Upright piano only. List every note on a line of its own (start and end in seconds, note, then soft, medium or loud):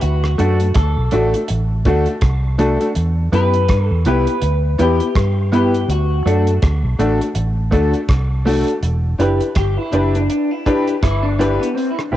0.38 0.62 A3 medium
0.38 0.63 D4 medium
0.38 0.63 F#4 medium
0.38 0.63 A4 medium
1.12 1.36 A3 medium
1.12 1.36 D4 medium
1.12 1.33 F#4 medium
1.12 1.33 A4 medium
1.34 1.40 F#4 soft
1.34 1.40 A4 soft
1.85 2.09 A3 medium
1.85 2.09 D4 medium
1.85 2.06 F#4 medium
1.85 2.05 A4 loud
2.07 2.13 F#4 soft
2.07 2.13 A4 soft
2.58 2.82 A3 medium
2.58 2.83 D4 medium
2.58 2.83 F#4 medium
2.58 2.83 A4 loud
3.32 3.56 B3 medium
3.32 3.56 E4 medium
3.32 3.57 G4 medium
3.32 3.57 B4 medium
4.06 4.30 B3 medium
4.06 4.30 E4 medium
4.06 4.26 G4 medium
4.06 4.26 B4 loud
4.27 4.33 G4 soft
4.27 4.33 B4 soft
4.78 5.03 B3 loud
4.78 5.03 E4 medium
4.78 4.99 G4 medium
4.78 4.99 B4 loud
5.01 5.07 G4 soft
5.01 5.07 B4 soft
5.52 5.76 B3 medium
5.52 5.76 E4 medium
5.52 5.76 G4 medium
5.52 5.77 B4 medium
6.25 6.50 A3 medium
6.25 6.50 D4 medium
6.25 6.50 F#4 medium
6.25 6.50 A4 medium
6.99 7.23 A3 medium
6.99 7.23 D4 medium
6.99 7.19 F#4 medium
6.99 7.19 A4 medium
7.21 7.27 F#4 soft
7.21 7.27 A4 soft
7.72 7.96 A3 loud
7.72 7.97 D4 medium
7.72 7.92 F#4 medium
7.72 7.93 A4 loud
7.94 8.00 F#4 soft
7.94 8.00 A4 soft
8.45 8.70 A3 medium
8.45 8.70 D4 medium
8.45 8.70 F#4 medium
8.45 8.70 A4 loud
9.18 9.43 D4 medium
9.18 9.43 E4 medium
9.18 9.43 G4 medium
9.18 9.43 B4 medium
9.77 9.83 G4 soft
9.77 9.83 B4 soft
9.91 10.16 D4 medium
9.91 10.16 E4 medium
9.91 10.17 G4 medium
9.91 10.17 B4 medium
10.66 10.90 D4 medium
10.66 10.90 E4 medium
10.66 10.90 G4 medium
10.66 10.90 B4 loud
11.38 11.63 D4 medium
11.38 11.63 E4 medium
11.38 11.64 G4 medium
11.38 11.64 B4 loud
12.13 12.17 C4 medium
12.13 12.17 E4 medium
12.13 12.17 G4 medium